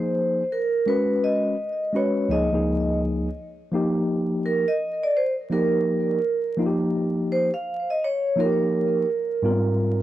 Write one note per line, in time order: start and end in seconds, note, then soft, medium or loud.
0.00 0.41 F3 medium
0.00 0.42 A#3 medium
0.00 0.42 D#4 medium
0.00 0.43 G#4 medium
0.00 0.43 C5 medium
0.00 0.55 C5 loud
0.52 0.89 A#4 medium
0.86 1.54 G#3 medium
0.86 1.54 C#4 medium
0.86 1.55 F#4 medium
0.86 1.25 B4 loud
0.86 1.55 B4 medium
1.24 1.97 D#5 loud
1.93 2.27 G#3 medium
1.93 2.28 C#4 medium
1.93 2.28 F#4 medium
1.93 2.29 B4 medium
1.93 2.32 C#5 medium
2.29 2.48 C#2 medium
2.29 2.48 F3 medium
2.29 2.49 A#3 medium
2.29 2.49 D#4 medium
2.29 2.49 G#4 medium
2.29 2.98 D#5 medium
2.51 3.27 C#2 medium
2.51 3.27 F3 medium
2.51 3.28 A#3 medium
2.51 3.28 D#4 medium
2.51 3.29 G#4 medium
3.72 4.63 F3 medium
3.72 4.64 A#3 medium
3.72 4.65 D#4 medium
3.72 4.65 G4 loud
4.46 4.69 A#4 medium
4.68 5.04 D#5 medium
5.03 5.15 D5 loud
5.17 5.33 C5 medium
5.50 6.18 F3 medium
5.50 6.18 A#3 medium
5.50 6.19 D#4 medium
5.50 6.19 G4 medium
5.50 6.55 A#4 medium
6.57 7.49 F3 medium
6.57 7.49 A#3 medium
6.57 7.50 D#4 medium
6.57 6.68 F4 medium
6.66 7.54 G4 medium
7.32 7.42 C5 medium
7.54 7.90 F5 medium
7.90 8.03 D#5 medium
8.04 8.40 C#5 loud
8.36 9.03 F3 medium
8.36 9.04 A#3 medium
8.36 9.05 D#4 medium
8.36 8.47 F4 medium
8.40 9.42 A#4 medium
8.46 9.08 G4 medium
9.42 10.03 G#2 medium
9.42 10.03 G3 medium
9.42 9.53 B3 medium
9.42 10.03 F4 medium
9.42 10.03 A#4 medium
9.51 10.03 C4 medium